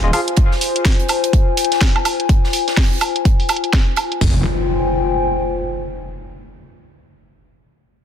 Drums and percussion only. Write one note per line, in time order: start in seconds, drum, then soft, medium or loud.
0.13 closed hi-hat medium
0.13 open hi-hat loud
0.13 high woodblock medium
0.28 closed hi-hat medium
0.37 kick loud
0.37 closed hi-hat medium
0.52 snare medium
0.61 closed hi-hat medium
0.61 open hi-hat loud
0.76 closed hi-hat soft
0.85 kick loud
0.85 snare loud
0.85 closed hi-hat medium
0.85 open hi-hat medium
1.00 closed hi-hat soft
1.09 closed hi-hat medium
1.09 open hi-hat loud
1.09 high woodblock medium
1.24 closed hi-hat soft
1.24 closed hi-hat medium
1.33 kick loud
1.33 closed hi-hat medium
1.57 closed hi-hat medium
1.57 open hi-hat loud
1.64 closed hi-hat medium
1.72 snare soft
1.72 closed hi-hat medium
1.81 kick loud
1.81 snare loud
1.81 closed hi-hat medium
1.96 high woodblock medium
2.05 closed hi-hat medium
2.05 open hi-hat loud
2.05 high woodblock medium
2.20 closed hi-hat medium
2.29 kick loud
2.29 closed hi-hat medium
2.44 snare soft
2.53 closed hi-hat medium
2.53 open hi-hat loud
2.68 snare medium
2.68 closed hi-hat soft
2.77 kick loud
2.77 snare loud
2.77 closed hi-hat medium
2.77 open hi-hat medium
3.01 closed hi-hat medium
3.01 open hi-hat loud
3.01 high woodblock medium
3.16 closed hi-hat soft
3.25 kick loud
3.25 closed hi-hat medium
3.40 open hi-hat medium
3.49 closed hi-hat medium
3.49 open hi-hat loud
3.49 high woodblock medium
3.56 closed hi-hat medium
3.64 closed hi-hat soft
3.73 kick loud
3.73 snare loud
3.73 closed hi-hat medium
3.96 closed hi-hat medium
3.96 open hi-hat loud
3.96 high woodblock medium
4.12 closed hi-hat soft
4.21 kick loud
4.21 floor tom loud
4.21 open hi-hat medium